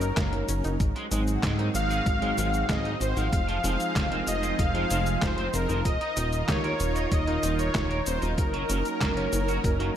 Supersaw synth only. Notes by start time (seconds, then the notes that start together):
Already playing: A#4
1.75 F5
2.70 D#5
3.01 C5
3.17 F5
4.27 D#5
4.59 F5
5.22 C5
5.54 A#4
5.86 D#5
6.49 C#5
7.12 D#5
7.59 C#5
8.06 C5
8.38 A#4